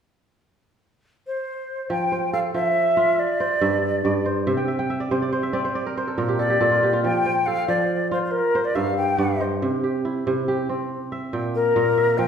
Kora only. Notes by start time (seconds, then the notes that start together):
1.90 F3
2.12 C5
2.33 A4
2.54 F3
2.97 F4
3.40 C5
3.61 G2 E5
4.05 G2 D5
4.26 C5
4.47 C3 E5
4.57 G5
4.68 E5
4.79 G5
4.90 E5
5.00 D5
5.11 C3 C5
5.22 D5
5.33 C5
5.43 E5
5.53 C4 D5
5.65 C5
5.75 D5
5.86 A#4
5.97 C5
6.08 A4
6.18 A#2 A#4
6.28 G4
6.39 A4
6.50 G4
6.61 A#2 A4
6.71 F4
6.83 G4
6.93 F4
7.04 F3
7.26 C5
7.47 A4
7.68 F3
8.11 F4
8.55 C5
8.75 G2 E5
9.18 G2 D5
9.41 C5
9.62 C3
9.84 G4
10.05 E4
10.27 C3
10.48 G4
10.69 C4
11.12 E5
11.33 A#2 G5
11.76 A#2 F5
11.97 E5
12.19 F3